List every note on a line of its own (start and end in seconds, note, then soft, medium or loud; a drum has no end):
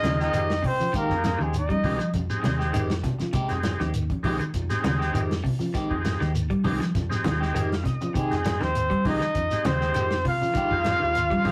0.00 0.30 D#2 medium
0.00 0.21 C#3 medium
0.00 0.41 G#3 medium
0.00 0.41 C4 medium
0.00 0.19 D#4 medium
0.00 0.41 D#4 medium
0.00 0.41 F4 loud
0.00 0.21 D#5 loud
0.00 snare medium
0.00 closed hi-hat medium
0.05 muted clean electric guitar stroke soft
0.05 high conga loud
0.05 low conga medium
0.20 0.33 G#3 soft
0.20 0.34 C4 medium
0.20 0.66 D#4 medium
0.20 0.34 G4 medium
0.20 0.68 D#5 loud
0.20 snare soft
0.20 shekere soft
0.33 0.60 F2 loud
0.33 0.50 D#3 medium
0.33 0.53 D#3 medium
0.33 0.53 G#3 medium
0.33 0.53 C4 medium
0.33 0.53 G4 loud
0.33 closed hi-hat medium
0.33 shekere loud
0.50 snare medium
0.50 closed hi-hat soft
0.63 0.80 C3 medium
0.63 0.94 C4 medium
0.63 muted clean electric guitar stroke soft
0.63 kick medium
0.63 open hi-hat medium
0.63 low conga medium
0.63 shekere soft
0.67 0.95 C5 loud
0.80 0.92 F3 medium
0.80 muted clean electric guitar stroke medium
0.80 high conga medium
0.80 shekere medium
0.93 1.11 D#3 medium
0.93 1.13 D#3 medium
0.93 1.13 G#3 medium
0.93 1.43 A#3 medium
0.93 1.13 C4 medium
0.93 1.13 G4 loud
0.93 kick loud
0.93 closed hi-hat medium
0.93 shekere medium
0.97 1.44 A#4 loud
1.10 1.36 F2 medium
1.10 1.42 G#3 medium
1.10 1.42 C4 medium
1.10 1.42 D#4 medium
1.10 1.43 G4 medium
1.10 kick medium
1.10 snare soft
1.24 muted clean electric guitar stroke soft
1.24 snare medium
1.24 closed hi-hat medium
1.24 high conga loud
1.24 shekere medium
1.39 1.67 D#2 medium
1.39 1.56 D#3 medium
1.39 1.55 G#3 medium
1.39 1.54 G#3 medium
1.39 1.54 C4 soft
1.39 1.54 G4 medium
1.39 high conga medium
1.39 shekere soft
1.43 1.55 G#4 medium
1.54 2.12 D#4 medium
1.54 muted clean electric guitar stroke medium
1.54 closed hi-hat medium
1.54 shekere medium
1.58 2.12 D#5 medium
1.69 1.87 G3 medium
1.69 muted clean electric guitar stroke soft
1.69 kick medium
1.69 closed hi-hat soft
1.69 high conga medium
1.83 1.98 C2 loud
1.83 2.00 D#3 medium
1.83 2.04 G#3 medium
1.83 2.00 G#3 medium
1.83 2.04 C4 medium
1.83 2.00 C4 medium
1.83 2.04 D#4 medium
1.83 2.04 G4 medium
1.83 1.99 G4 medium
1.83 kick medium
1.83 open hi-hat medium
1.83 high conga medium
1.83 low conga medium
1.83 shekere soft
1.99 2.16 F3 medium
1.99 muted clean electric guitar stroke soft
1.99 muted fingered electric bass stroke soft
1.99 closed hi-hat soft
1.99 shekere medium
2.14 2.28 F2 medium
2.14 kick medium
2.14 closed hi-hat medium
2.14 high conga medium
2.14 low conga medium
2.14 shekere medium
2.30 2.81 G#3 loud
2.30 2.81 C4 medium
2.30 2.81 D#4 medium
2.30 2.82 G4 loud
2.30 muted clean electric guitar stroke medium
2.30 shekere medium
2.43 2.72 D#2 medium
2.43 2.61 C3 medium
2.43 muted clean electric guitar stroke soft
2.43 snare medium
2.43 closed hi-hat medium
2.43 high conga loud
2.59 2.72 G#3 soft
2.59 2.72 C4 soft
2.59 2.73 G4 medium
2.59 snare soft
2.59 shekere soft
2.73 3.02 F2 loud
2.73 2.91 D#3 medium
2.73 2.92 D#3 medium
2.73 2.92 G#3 loud
2.73 2.93 C4 loud
2.73 2.93 G4 loud
2.73 closed hi-hat medium
2.73 shekere loud
2.90 snare medium
2.90 closed hi-hat soft
3.03 3.21 C3 medium
3.03 muted clean electric guitar stroke soft
3.03 kick medium
3.03 snare soft
3.03 closed hi-hat medium
3.03 low conga medium
3.03 shekere soft
3.19 3.33 F3 loud
3.19 muted clean electric guitar stroke medium
3.19 snare soft
3.19 closed hi-hat soft
3.19 high conga medium
3.19 shekere medium
3.33 3.51 C3 medium
3.33 3.53 G#3 loud
3.33 3.53 C4 loud
3.33 3.53 G4 loud
3.33 muted clean electric guitar stroke loud
3.33 kick loud
3.33 closed hi-hat medium
3.33 shekere medium
3.49 3.77 F2 medium
3.49 3.82 G#3 medium
3.49 3.82 C4 medium
3.49 3.82 D#4 medium
3.49 3.82 G4 medium
3.49 snare soft
3.49 closed hi-hat soft
3.63 muted clean electric guitar stroke soft
3.63 snare medium
3.63 closed hi-hat medium
3.63 high conga loud
3.63 shekere medium
3.80 4.07 D#2 medium
3.80 3.97 D#3 medium
3.80 3.93 G#3 soft
3.80 3.93 C4 medium
3.80 3.93 G4 medium
3.80 snare soft
3.80 high conga medium
3.80 shekere soft
3.94 muted clean electric guitar stroke medium
3.94 closed hi-hat medium
3.94 shekere medium
4.10 muted clean electric guitar stroke soft
4.10 kick medium
4.10 closed hi-hat soft
4.10 high conga medium
4.23 4.38 C2 loud
4.23 4.40 D#3 medium
4.23 4.44 G#3 medium
4.23 4.38 G#3 medium
4.23 4.44 C4 medium
4.23 4.38 C4 medium
4.23 4.44 D#4 medium
4.23 4.44 G4 loud
4.23 4.38 G4 medium
4.23 kick medium
4.23 open hi-hat medium
4.23 high conga medium
4.23 low conga loud
4.23 shekere soft
4.39 4.57 D#3 medium
4.39 muted clean electric guitar stroke medium
4.39 muted fingered electric bass stroke soft
4.39 closed hi-hat soft
4.39 shekere medium
4.54 4.68 F2 loud
4.54 kick medium
4.54 closed hi-hat medium
4.54 low conga medium
4.54 shekere medium
4.69 5.21 G#3 loud
4.69 5.21 C4 medium
4.69 5.22 D#4 medium
4.69 5.22 G4 loud
4.69 muted clean electric guitar stroke medium
4.69 snare soft
4.69 closed hi-hat soft
4.69 shekere medium
4.84 5.11 D#2 medium
4.84 5.01 C#3 medium
4.84 muted clean electric guitar stroke soft
4.84 snare medium
4.84 closed hi-hat medium
4.84 high conga loud
4.84 low conga medium
4.99 5.14 G#3 medium
4.99 5.14 C4 soft
4.99 5.14 G4 medium
4.99 snare soft
4.99 shekere soft
5.14 5.41 F2 loud
5.14 5.31 D#3 medium
5.14 5.33 D#3 medium
5.14 5.33 G#3 medium
5.14 5.33 C4 loud
5.14 5.33 G4 medium
5.14 closed hi-hat medium
5.14 shekere loud
5.31 snare medium
5.31 closed hi-hat soft
5.43 5.61 C3 medium
5.43 muted clean electric guitar stroke soft
5.43 kick medium
5.43 open hi-hat medium
5.43 low conga medium
5.43 shekere soft
5.59 5.72 F3 loud
5.59 muted clean electric guitar stroke medium
5.59 high conga medium
5.59 shekere medium
5.74 5.91 D#3 medium
5.74 5.93 D#3 medium
5.74 5.93 G#3 medium
5.74 5.93 C4 loud
5.74 5.93 G4 loud
5.74 kick medium
5.74 snare soft
5.74 closed hi-hat medium
5.74 shekere medium
5.90 6.17 F2 medium
5.90 6.22 G#3 medium
5.90 6.23 C4 medium
5.90 6.23 D#4 medium
5.90 6.23 G4 loud
5.90 kick medium
6.04 muted clean electric guitar stroke soft
6.04 snare medium
6.04 closed hi-hat medium
6.04 high conga medium
6.04 shekere medium
6.20 6.47 D#2 medium
6.20 6.38 D#3 medium
6.20 6.33 G#3 soft
6.20 6.33 C4 soft
6.20 6.34 G4 medium
6.20 snare soft
6.20 shekere soft
6.34 muted clean electric guitar stroke soft
6.34 closed hi-hat medium
6.34 shekere loud
6.50 6.68 G3 medium
6.50 muted clean electric guitar stroke medium
6.50 kick medium
6.50 closed hi-hat soft
6.64 6.79 C2 loud
6.64 6.80 D#3 medium
6.64 6.84 G#3 loud
6.64 6.80 G#3 medium
6.64 6.85 C4 medium
6.64 6.80 C4 medium
6.64 6.84 D#4 medium
6.64 6.79 G4 medium
6.64 6.85 G4 loud
6.64 kick medium
6.64 open hi-hat medium
6.64 high conga medium
6.64 low conga loud
6.64 shekere soft
6.80 6.98 F3 medium
6.80 muted clean electric guitar stroke medium
6.80 muted fingered electric bass stroke soft
6.80 snare soft
6.80 closed hi-hat soft
6.80 shekere medium
6.95 7.09 F2 medium
6.95 kick medium
6.95 snare soft
6.95 closed hi-hat medium
6.95 high conga medium
6.95 low conga medium
6.95 shekere medium
7.09 7.61 G#3 loud
7.09 7.61 C4 medium
7.09 7.62 D#4 medium
7.09 7.62 G4 loud
7.09 muted clean electric guitar stroke medium
7.09 snare soft
7.09 shekere loud
7.24 7.52 D#2 loud
7.24 7.42 D#3 medium
7.24 muted clean electric guitar stroke soft
7.24 snare medium
7.24 closed hi-hat medium
7.24 high conga loud
7.24 low conga medium
7.40 7.53 G#3 medium
7.40 7.54 C4 soft
7.40 7.54 G4 medium
7.40 snare soft
7.40 shekere soft
7.54 7.82 F2 loud
7.54 7.73 D#3 loud
7.54 7.72 D#3 medium
7.54 7.73 G#3 medium
7.54 7.74 C4 loud
7.54 7.74 G4 loud
7.54 7.70 G#5 medium
7.54 closed hi-hat medium
7.54 shekere loud
7.72 7.85 F5 medium
7.72 snare medium
7.72 closed hi-hat soft
7.84 8.01 C3 medium
7.84 8.13 D#5 medium
7.84 muted clean electric guitar stroke medium
7.84 kick medium
7.84 snare soft
7.84 closed hi-hat medium
7.84 low conga medium
7.84 shekere soft
8.01 8.14 F3 medium
8.01 muted clean electric guitar stroke medium
8.01 closed hi-hat soft
8.01 high conga medium
8.01 shekere medium
8.14 8.32 C3 medium
8.14 8.34 D#3 medium
8.14 8.61 G#3 medium
8.14 8.34 C4 loud
8.14 8.34 G4 medium
8.14 8.64 G#4 medium
8.14 muted clean electric guitar stroke medium
8.14 kick loud
8.14 closed hi-hat medium
8.14 shekere medium
8.30 8.58 F2 medium
8.30 8.63 G#3 medium
8.30 8.63 C4 medium
8.30 8.63 D#4 medium
8.30 8.63 G5 medium
8.30 snare soft
8.30 closed hi-hat soft
8.44 muted clean electric guitar stroke soft
8.44 snare medium
8.44 closed hi-hat medium
8.44 high conga loud
8.44 shekere medium
8.60 8.88 D#2 medium
8.60 8.78 D#3 medium
8.60 8.75 G#3 soft
8.60 9.03 C4 medium
8.60 8.75 C4 soft
8.60 8.76 G4 soft
8.60 9.06 C5 loud
8.60 snare soft
8.60 high conga medium
8.60 shekere soft
8.75 muted clean electric guitar stroke soft
8.75 closed hi-hat medium
8.75 shekere medium
8.90 9.08 G3 medium
8.90 muted clean electric guitar stroke soft
8.90 kick medium
8.90 closed hi-hat soft
9.04 9.19 C2 medium
9.04 9.21 D#3 medium
9.04 9.25 G#3 medium
9.04 9.20 G#3 medium
9.04 9.25 C4 medium
9.04 9.20 C4 medium
9.04 9.66 D#4 loud
9.04 9.25 D#4 medium
9.04 9.26 G4 medium
9.04 9.19 G4 medium
9.04 kick medium
9.04 open hi-hat medium
9.04 high conga loud
9.04 low conga loud
9.04 shekere soft
9.08 9.67 D#5 loud
9.20 9.38 D#3 medium
9.20 muted clean electric guitar stroke soft
9.20 muted fingered electric bass stroke soft
9.20 snare soft
9.20 closed hi-hat soft
9.20 shekere medium
9.35 9.49 F2 medium
9.35 kick medium
9.35 closed hi-hat medium
9.35 high conga medium
9.35 shekere medium
9.51 10.03 G#3 medium
9.51 10.03 C4 medium
9.51 10.03 D#4 medium
9.51 10.03 G4 medium
9.51 muted clean electric guitar stroke soft
9.51 snare soft
9.51 closed hi-hat soft
9.51 shekere medium
9.65 9.92 D#2 medium
9.65 9.83 C#3 medium
9.65 10.25 C4 medium
9.65 10.26 C5 loud
9.65 muted clean electric guitar stroke soft
9.65 snare medium
9.65 closed hi-hat medium
9.65 high conga loud
9.65 low conga medium
9.81 9.94 G#3 soft
9.81 9.94 C4 soft
9.81 9.94 G4 soft
9.81 snare soft
9.81 shekere soft
9.94 10.23 F2 loud
9.94 10.12 D#3 medium
9.94 10.14 D#3 medium
9.94 10.14 G#3 medium
9.94 10.14 C4 loud
9.94 10.14 G4 medium
9.94 closed hi-hat medium
9.94 shekere loud
10.10 snare medium
10.10 closed hi-hat soft
10.25 10.42 C3 medium
10.25 11.52 F4 loud
10.25 11.52 F5 loud
10.25 muted clean electric guitar stroke soft
10.25 kick medium
10.25 open hi-hat medium
10.25 low conga medium
10.25 shekere soft
10.41 10.54 F3 medium
10.41 muted clean electric guitar stroke soft
10.41 high conga medium
10.41 shekere medium
10.54 10.71 D#3 medium
10.54 10.74 D#3 medium
10.54 10.74 G#3 medium
10.54 10.75 C4 medium
10.54 10.75 G4 loud
10.54 kick loud
10.54 closed hi-hat medium
10.54 shekere medium
10.71 10.98 F2 medium
10.71 11.04 G#3 medium
10.71 11.04 C4 medium
10.71 11.04 D#4 medium
10.71 11.04 G4 medium
10.71 kick medium
10.84 muted clean electric guitar stroke soft
10.84 snare medium
10.84 closed hi-hat soft
10.84 high conga loud
10.84 shekere medium
11.00 11.29 D#2 medium
11.00 11.18 D#3 medium
11.00 11.15 G#3 soft
11.00 11.15 C4 medium
11.00 11.15 G4 medium
11.00 shekere soft
11.15 muted clean electric guitar stroke soft
11.15 closed hi-hat medium
11.15 shekere medium
11.30 11.48 G3 medium
11.30 muted clean electric guitar stroke soft
11.30 kick medium
11.30 closed hi-hat soft
11.30 high conga medium
11.44 11.52 C2 loud
11.44 11.52 D#3 medium
11.44 11.52 G#3 loud
11.44 11.52 G#3 medium
11.44 11.52 C4 loud
11.44 11.52 C4 medium
11.44 11.52 D#4 loud
11.44 11.52 G4 loud
11.44 kick medium
11.44 open hi-hat medium
11.44 high conga medium
11.44 low conga medium
11.44 shekere soft